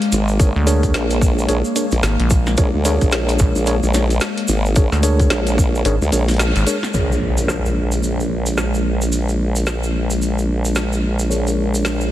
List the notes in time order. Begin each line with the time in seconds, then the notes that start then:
Already playing: G#3 A#3
0.02 closed hi-hat
0.12 G#1, closed hi-hat, shaker
0.28 shaker
0.40 D4 G#4 A#4 C#5, kick, closed hi-hat, shaker
0.56 D2
0.66 D4 G#4 A#4 C#5, closed hi-hat, shaker
0.83 kick, closed hi-hat, shaker
0.94 A#1, snare, closed hi-hat, shaker
1.10 closed hi-hat, shaker
1.21 kick, shaker
1.39 shaker
1.48 A#1 D4 G#4 A#4 C#5, closed hi-hat, shaker
1.65 shaker
1.76 D4 G#4 A#4 C#5, closed hi-hat, shaker
1.91 A#1, closed hi-hat, shaker
2.03 G#1, snare, closed hi-hat, shaker
2.20 A#1, closed hi-hat
2.30 kick, closed hi-hat, shaker
2.46 snare, shaker
2.57 A#1 D4 G#4 A#4 C#5, kick, closed hi-hat, shaker
2.74 D2
2.85 D4 G#4 A#4 C#5, closed hi-hat, shaker
3.01 A#1, kick, closed hi-hat, shaker
3.12 snare, closed hi-hat, shaker
3.29 closed hi-hat, shaker
3.39 A#1, kick, shaker
3.56 A#1, shaker
3.66 D4 G#4 A#4 C#5, closed hi-hat, shaker
3.83 A#1, shaker
3.94 D4 G#4 A#4 C#5, snare, closed hi-hat, shaker
4.10 closed hi-hat, shaker
4.21 snare, closed hi-hat, shaker
4.38 closed hi-hat
4.48 G#1, shaker
4.65 shaker
4.76 D4 G#4 A#4 C#5, kick, closed hi-hat, shaker
4.92 D2, snare, shaker
5.03 D4 G#4 A#4 C#5, closed hi-hat, shaker
5.20 kick, closed hi-hat, shaker
5.30 A#1, snare, closed hi-hat, shaker
5.47 closed hi-hat, shaker
5.58 kick, shaker
5.75 shaker
5.85 G#1 D4 G#4 A#4 C#5, closed hi-hat, shaker
6.01 D2, shaker
6.12 A#1 D4 G#4 A#4 C#5, closed hi-hat, shaker
6.28 snare, closed hi-hat, shaker
6.31 closed hi-hat
6.34 closed hi-hat
6.37 snare, closed hi-hat
6.39 closed hi-hat, shaker
6.48 closed hi-hat
6.52 closed hi-hat
6.56 G#1, closed hi-hat, shaker
6.67 D4 G#4 A#4 C#5, closed hi-hat, shaker
6.83 snare, shaker
6.94 A#1 G#3 D4 G#4 A#4 C#5, crash, impact, shaker
7.12 shaker
7.38 shaker
7.48 snare, shaker
7.66 shaker
7.92 shaker
8.03 shaker
8.20 shaker
8.46 shaker
8.57 snare, shaker
8.74 shaker
9.02 shaker
9.12 shaker
9.29 shaker
9.56 shaker
9.66 snare, shaker
9.83 shaker
10.10 shaker
10.22 shaker
10.38 shaker
10.65 shaker
10.75 snare, shaker
10.93 shaker
11.19 shaker
11.30 D4 G#4 A#4 C#5, shaker
11.47 shaker
11.74 shaker
11.85 snare, shaker
12.01 shaker